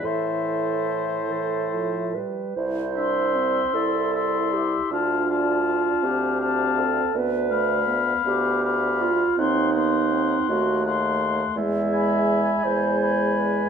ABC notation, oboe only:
X:1
M:6/8
L:1/8
Q:3/8=54
K:C
V:1 name="Oboe"
c4- c z | z e3 e2 | f f3 f2 | z f3 f2 |
^f f3 f2 | z ^g3 g2 |]